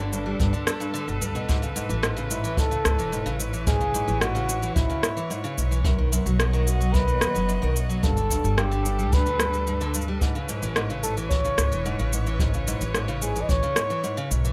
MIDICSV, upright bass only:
0, 0, Header, 1, 2, 480
1, 0, Start_track
1, 0, Tempo, 545455
1, 1310, Time_signature, 4, 2, 24, 8
1, 12784, End_track
2, 0, Start_track
2, 0, Title_t, "Upright bass"
2, 0, Program_c, 0, 32
2, 0, Note_on_c, 0, 31, 98
2, 304, Note_off_c, 0, 31, 0
2, 352, Note_on_c, 0, 31, 88
2, 442, Note_off_c, 0, 31, 0
2, 948, Note_on_c, 0, 31, 83
2, 1040, Note_off_c, 0, 31, 0
2, 1069, Note_on_c, 0, 38, 79
2, 1188, Note_off_c, 0, 38, 0
2, 1188, Note_on_c, 0, 33, 89
2, 1623, Note_off_c, 0, 33, 0
2, 1669, Note_on_c, 0, 33, 95
2, 2463, Note_off_c, 0, 33, 0
2, 2510, Note_on_c, 0, 37, 95
2, 2601, Note_off_c, 0, 37, 0
2, 2629, Note_on_c, 0, 28, 72
2, 2812, Note_off_c, 0, 28, 0
2, 2868, Note_on_c, 0, 33, 78
2, 3543, Note_off_c, 0, 33, 0
2, 3590, Note_on_c, 0, 33, 91
2, 4144, Note_off_c, 0, 33, 0
2, 4190, Note_on_c, 0, 33, 95
2, 4281, Note_off_c, 0, 33, 0
2, 4908, Note_on_c, 0, 35, 84
2, 5463, Note_off_c, 0, 35, 0
2, 5509, Note_on_c, 0, 35, 99
2, 6304, Note_off_c, 0, 35, 0
2, 6352, Note_on_c, 0, 39, 100
2, 6442, Note_off_c, 0, 39, 0
2, 6473, Note_on_c, 0, 30, 81
2, 6654, Note_off_c, 0, 30, 0
2, 6711, Note_on_c, 0, 35, 76
2, 7070, Note_on_c, 0, 31, 81
2, 7083, Note_off_c, 0, 35, 0
2, 7384, Note_off_c, 0, 31, 0
2, 7430, Note_on_c, 0, 31, 88
2, 8035, Note_off_c, 0, 31, 0
2, 8035, Note_on_c, 0, 38, 74
2, 8947, Note_off_c, 0, 38, 0
2, 9349, Note_on_c, 0, 33, 93
2, 10144, Note_off_c, 0, 33, 0
2, 10190, Note_on_c, 0, 37, 94
2, 10281, Note_off_c, 0, 37, 0
2, 10310, Note_on_c, 0, 28, 74
2, 10493, Note_off_c, 0, 28, 0
2, 10553, Note_on_c, 0, 33, 81
2, 11225, Note_off_c, 0, 33, 0
2, 11271, Note_on_c, 0, 33, 92
2, 11825, Note_off_c, 0, 33, 0
2, 11872, Note_on_c, 0, 33, 92
2, 11962, Note_off_c, 0, 33, 0
2, 12594, Note_on_c, 0, 35, 80
2, 12784, Note_off_c, 0, 35, 0
2, 12784, End_track
0, 0, End_of_file